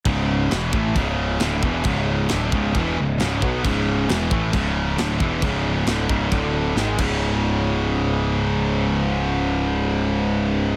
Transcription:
<<
  \new Staff \with { instrumentName = "Distorted electric guitar" } { \clef bass \time 4/4 \key cis \phrygian \tempo 4 = 134 <cis, gis, cis>4 <e, b, e>8 <a, e a>8 <cis, gis, cis>4 <d, a, d>8 <e, b, e>8 | <cis, gis, cis>4 <d, a, d>8 <cis, gis, cis>8 <e, b, e>8 <cis, gis,>8 <cis, gis, cis>8 <b, fis b>8 | <cis, gis, cis>4 <e, b, e>8 <a, e a>8 <cis, gis, cis>4 <d, a, d>8 <e, b, e>8 | <cis, gis, cis>4 <d, a, d>8 <cis, gis, cis>8 <d, a, d>4 <gis, dis gis>8 <cis, gis, cis>8~ |
<cis, gis, cis>1~ | <cis, gis, cis>1 | }
  \new Staff \with { instrumentName = "Distorted electric guitar" } { \clef bass \time 4/4 \key cis \phrygian <cis, gis, cis>4 <e, b, e>8 <a, e a>8 <cis, gis, cis>4 <d, a, d>8 <e, b, e>8 | <cis, gis, cis>4 <d, a, d>8 <cis, gis, cis>8 <e, b, e>8 <cis, gis,>8 <cis, gis, cis>8 <b, fis b>8 | <cis, gis, cis>4 <e, b, e>8 <a, e a>8 <cis, gis, cis>4 <d, a, d>8 <e, b, e>8 | <cis, gis, cis>4 <d, a, d>8 <cis, gis, cis>8 <d, a, d>4 <gis, dis gis>8 <cis, gis, cis>8~ |
<cis, gis, cis>1~ | <cis, gis, cis>1 | }
  \new Staff \with { instrumentName = "Distorted electric guitar" } { \clef bass \time 4/4 \key cis \phrygian <cis, gis, cis>4 <e, b, e>8 <a, e a>8 <cis, gis, cis>4 <d, a, d>8 <e, b, e>8 | <cis, gis, cis>4 <d, a, d>8 <cis, gis, cis>8 <e, b, e>8 <cis, gis,>8 <cis, gis, cis>8 <b, fis b>8 | <cis, gis, cis>4 <e, b, e>8 <a, e a>8 <cis, gis, cis>4 <d, a, d>8 <e, b, e>8 | <cis, gis, cis>4 <d, a, d>8 <cis, gis, cis>8 <d, a, d>4 <gis, dis gis>8 <cis, gis, cis>8~ |
<cis, gis, cis>1~ | <cis, gis, cis>1 | }
  \new Staff \with { instrumentName = "Picked electric bass" } { \clef bass \time 4/4 \key cis \phrygian cis,,4 e,,8 a,,8 cis,,4 d,,8 e,,8 | cis,,4 d,,8 cis,,8 e,,8 cis,,8 cis,,8 b,,8 | cis,,4 e,,8 a,,8 cis,,4 d,,8 e,,8 | cis,,4 d,,8 cis,,8 d,,4 gis,,8 cis,,8~ |
cis,,1~ | cis,,1 | }
  \new DrumStaff \with { instrumentName = "Drums" } \drummode { \time 4/4 <cymc bd>4 <cymc sn>8 bd8 <cymc bd>4 <cymc sn>8 bd8 | <cymc bd>4 <cymc sn>8 bd8 <cymc bd>4 <cymc sn>8 bd8 | <cymc bd>4 <cymc sn>8 bd8 <cymc bd>4 <cymc sn>8 bd8 | <cymc bd>4 <cymc sn>8 bd8 <cymc bd>4 sn8 <cymc bd>8 |
r4 r4 r4 r4 | r4 r4 r4 r4 | }
>>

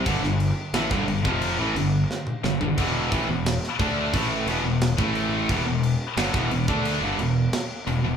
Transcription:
<<
  \new Staff \with { instrumentName = "Distorted electric guitar" } { \clef bass \time 4/4 \key e \phrygian \tempo 4 = 88 <g, d>16 <g, d>8 r16 <a, e>16 <g, d>16 <g, d>16 <f, c f>8 <a, e>16 <g, d>8 r8 <g, d>16 <g, d>16 | <e, b, e>8 <a, e>16 <e, b,>8 r16 <d a d'>8 <a, e a>8 <e, b,>16 <e, b,>8 <a, e a>8. | <e, b,>16 <e, b,>8 r16 <g, d>16 <e, b,>16 <e, b,>16 <d a d'>8 <g, d>16 <e, b,>8 r8 <e, b,>16 <e, b,>16 | }
  \new Staff \with { instrumentName = "Distorted electric guitar" } { \clef bass \time 4/4 \key e \phrygian <g, d>16 <g, d>8 r16 <a, e>16 <g, d>16 <g, d>16 <f, c f>8 <a, e>16 <g, d>8 r8 <g, d>16 <g, d>16 | <e, b, e>8 <a, e>16 <e, b,>8 r16 <d a d'>8 <a, e a>8 <e, b,>16 <e, b,>8 <a, e a>8. | <e, b,>16 <e, b,>8 r16 <g, d>16 <e, b,>16 <e, b,>16 <d a d'>8 <g, d>16 <e, b,>8 r8 <e, b,>16 <e, b,>16 | }
  \new Staff \with { instrumentName = "Distorted electric guitar" } { \clef bass \time 4/4 \key e \phrygian <g, d>16 <g, d>8 r16 <a, e>16 <g, d>16 <g, d>16 <f, c f>8 <a, e>16 <g, d>8 r8 <g, d>16 <g, d>16 | <e, b, e>8 <a, e>16 <e, b,>8 r16 <d a d'>8 <a, e a>8 <e, b,>16 <e, b,>8 <a, e a>8. | <e, b,>16 <e, b,>8 r16 <g, d>16 <e, b,>16 <e, b,>16 <d a d'>8 <g, d>16 <e, b,>8 r8 <e, b,>16 <e, b,>16 | }
  \new Staff \with { instrumentName = "Fingered electric bass" } { \clef bass \time 4/4 \key e \phrygian g,,16 g,,8 r16 a,,16 g,,16 g,,16 f,,8 a,,16 g,,8 r8 g,,16 g,,16 | e,,8 a,,16 e,,8 r16 d,8 a,,8 e,,16 e,,8 a,,8. | e,,16 e,,8 r16 g,,16 e,,16 e,,16 d,8 g,,16 e,,8 r8 e,,16 e,,16 | }
  \new DrumStaff \with { instrumentName = "Drums" } \drummode { \time 4/4 <cymc bd>16 sn16 cymc8 <cymc sn>16 <bd sn>16 cymc16 bd16 cymc8 cymc8 sn16 toml16 sn16 tomfh16 | <cymc bd>8 <cymc bd>8 <cymc sn>16 sn16 <cymc bd>8 <cymc bd>8 cymc8 <cymc sn>16 bd16 cymc8 | <cymc bd>8 cymc8 <cymc sn>16 <bd sn>16 cymc16 bd16 cymc8 cymc8 <cymc sn>8 cymc8 | }
>>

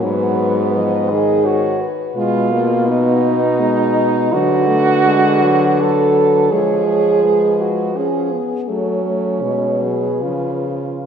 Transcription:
<<
  \new Staff \with { instrumentName = "French horn" } { \time 3/4 \key gis \dorian \tempo 4 = 83 b'4 dis''4 cis''8 b'8~ | b'8 r8 dis''2 | \key cis \phrygian b'4 b'2 | cis''8 cis''8 b'4 gis'4 |
a'8 r8 b'2 | }
  \new Staff \with { instrumentName = "French horn" } { \time 3/4 \key gis \dorian b4. gis'8 fis'8 r8 | eis'4 dis'2 | \key cis \phrygian fis'2 a'4 | gis'4. fis'8 gis'8 r8 |
cis'4. gis'8 eis'4 | }
  \new Staff \with { instrumentName = "French horn" } { \clef bass \time 3/4 \key gis \dorian fis4 eis8 dis4 r8 | gis8 ais8 b4 gis4 | \key cis \phrygian fis8 a8 gis8 fis8 fis4 | gis4 gis4 cis'8 b8 |
a8 a8 gis8 fis8 eis8 r8 | }
  \new Staff \with { instrumentName = "French horn" } { \clef bass \time 3/4 \key gis \dorian gis,2~ gis,8 r8 | b,2. | \key cis \phrygian d2. | eis2~ eis8 r8 |
fis4 b,4 cis4 | }
>>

